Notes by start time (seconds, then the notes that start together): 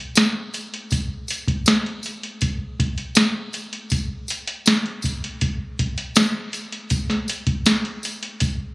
0.15 snare, closed hi-hat, tambourine
0.54 closed hi-hat, tambourine
0.74 closed hi-hat
0.91 kick, closed hi-hat, tambourine
1.28 closed hi-hat, tambourine
1.48 kick, closed hi-hat
1.66 snare, closed hi-hat, tambourine
1.86 closed hi-hat
2.03 closed hi-hat, tambourine
2.23 closed hi-hat
2.41 kick, closed hi-hat, tambourine
2.80 kick, closed hi-hat
2.98 closed hi-hat
3.15 snare, closed hi-hat, tambourine
3.53 closed hi-hat, tambourine
3.73 closed hi-hat
3.90 kick, closed hi-hat, tambourine
4.28 closed hi-hat, tambourine
4.47 closed hi-hat
4.66 snare, closed hi-hat, tambourine
4.86 closed hi-hat
5.02 kick, closed hi-hat, tambourine
5.24 closed hi-hat
5.41 kick, closed hi-hat
5.79 kick, closed hi-hat
5.98 closed hi-hat
6.16 snare, closed hi-hat, tambourine
6.53 closed hi-hat, tambourine
6.72 closed hi-hat
6.90 kick, closed hi-hat, tambourine
7.10 snare, closed hi-hat
7.28 closed hi-hat, tambourine
7.47 kick, closed hi-hat
7.66 snare, closed hi-hat, tambourine
7.85 closed hi-hat
8.03 closed hi-hat, tambourine
8.23 closed hi-hat
8.40 kick, closed hi-hat, tambourine